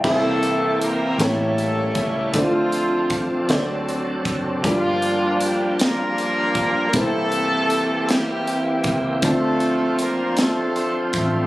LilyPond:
<<
  \new Staff \with { instrumentName = "Grand piano" } { \time 6/8 \key c \mixolydian \tempo 4. = 52 << { g''16 r2 r8. | r2. | r2. | r2. |
r2. | } \\ { <bes e' g' c'' e''>4. <bes e' g' a' cis''>4. | <d' e' f' a' c'' d''>4. <d' fis' a' c'' d''>4. | <d' f' g' bes' d''>2. | <bes c' e' g' c''>2. |
<c' d' f' c'' a''>2. | } >> }
  \new Staff \with { instrumentName = "Grand piano" } { \clef bass \time 6/8 \key c \mixolydian c4. a,4. | d4. d4. | g,4. r4. | c4. r4. |
d4. r4. | }
  \new Staff \with { instrumentName = "Horn section" } { \time 6/8 \key c \mixolydian << { <a a'>4 <bes bes'>8 <a a'>4 <a a'>8 | <f f'>4. r4. | <f f'>4 <g g'>8 <bes bes'>4. | <a a'>4. <g g'>4 r8 |
<a a'>4 <bes bes'>8 <a a'>4 <a a'>8 | } \\ { e'4. <cis' e'>4. | <a c'>4. r4. | <bes d'>4. <d' f'>4. | e'4. <bes e'>4. |
<c' f'>4. <c' f'>4. | } >> }
  \new Staff \with { instrumentName = "Tonewheel organ" } { \time 6/8 \key c \mixolydian <e bes c' g'>4. <g bes c' cis' a'>4. | <f c' d' a'>4. r4. | <f bes d' g'>2. | <e bes c' g'>2. |
<f c' d' c''>2. | }
  \new Staff \with { instrumentName = "Fingered electric bass" } { \clef bass \time 6/8 \key c \mixolydian c,4. a,,4 cis,8 | d,4. d,4 fis,,8 | g,,2~ g,,8 b,,8 | c,2~ c,8 des,8 |
d,2~ d,8 a,,8 | }
  \new DrumStaff \with { instrumentName = "Drums" } \drummode { \time 6/8 <cymc bd>8 hh8 hh8 <hh sn>8 hh8 <hh bd>8 | <hh bd>8 hh8 <hh bd>8 <hh sn>8 hh8 <hh bd>8 | <hh bd>8 hh8 hh8 <hh sn>8 hh8 <hh bd>8 | <hh bd>8 hh8 hh8 <hh sn>8 hh8 <hh bd>8 |
<hh bd>8 hh8 hh8 <hh sn>8 hh8 <hh bd>8 | }
>>